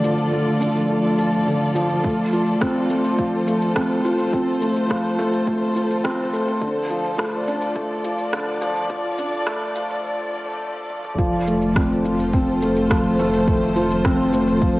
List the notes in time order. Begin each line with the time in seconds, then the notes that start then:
Already playing: D3 F3 A3 D4 F4 A4 D5
0.04 F3, shaker
0.18 shaker
0.32 A3, shaker
0.61 D4, shaker
0.76 shaker
0.89 A3, shaker
1.18 F3, shaker
1.33 shaker
1.47 D3, shaker
1.75 F3, shaker
1.89 shaker
2.04 A3, kick, shaker
2.33 F4, shaker
2.47 shaker
2.61 C4 C5, kick, cross-stick, shaker
2.90 A3, shaker
3.04 shaker
3.18 F3, kick, shaker
3.47 A3, shaker
3.62 shaker
3.75 C4, kick, cross-stick, shaker
4.04 F4, shaker
4.19 shaker
4.33 C4, kick, shaker
4.61 A3, shaker
4.76 shaker
4.90 F3, kick, cross-stick, shaker
5.19 A3, shaker
5.33 shaker
5.47 A3, kick, shaker
5.76 F4, shaker
5.90 shaker
6.04 C4, kick, cross-stick, shaker
6.33 A3, shaker
6.48 shaker
6.61 D3 F3, kick, shaker
6.90 F3, shaker
7.04 shaker
7.19 A3, kick, cross-stick, shaker
7.31 D5
7.48 D4, shaker
7.62 shaker
7.76 A3, kick, shaker
8.04 F3, shaker
8.18 shaker
8.33 D3, kick, cross-stick, shaker
8.61 F3, shaker
8.76 shaker
8.90 F3, kick, shaker
9.18 D4, shaker
9.33 shaker
9.47 A3, kick, cross-stick, shaker
9.76 F3, shaker
9.90 shaker
10.90 high tom
11.04 mid tom
11.19 F1 F3, kick, shaker
11.23 F4
11.47 A3, shaker
11.57 A4
11.62 shaker
11.74 C4 C5, kick, cross-stick, shaker
12.05 F4, shaker
12.19 shaker
12.33 C4, kick, shaker
12.62 A3, shaker
12.76 shaker
12.90 F3, kick, cross-stick, shaker
13.19 A3, shaker
13.33 shaker
13.47 A3, kick, shaker
13.76 F4, shaker
13.91 shaker
14.05 C4, kick, cross-stick, shaker
14.33 A3, shaker
14.48 shaker
14.62 F3, kick, shaker